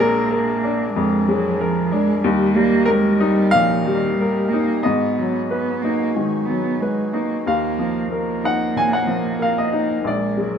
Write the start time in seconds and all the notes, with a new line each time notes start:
Already playing: A#1 G#3 A#3 D4 G#4 A#4 D5
0.00 A#4
0.31 A#4
0.64 D4
0.93 F2 G#3
1.27 F#3 G#3
1.59 F3 A#4
1.91 G#3 D4
2.22 D#2 G3 D#4 G4 A#4
2.56 G3 A#3
2.86 G#3 A#4
2.91 A#4
3.20 G3 D#4
3.51 A#2 F3 F5
3.85 D#3 G3
4.17 G3 A#4
4.49 A#3 D#4
4.82 G#2 B3 F#4 D#5
4.86 G#4
5.19 F#3
5.48 B3 B4
5.82 A#3 D#4
6.14 D#3 G#3
6.45 B3
6.50 F#3
6.80 G#3 B4
7.13 A#3 D#4
7.45 D#2 F3 A#3 D#4 A#4 F5
7.79 F3
8.12 A#3 A#4
8.44 D#4 F#5
8.76 A#2 G#5
8.93 F#5
9.07 F3
9.39 A#4 F5
9.58 D#5
9.73 D#4
10.04 A#1 G#3 G#4 D5
10.37 F#3 G#3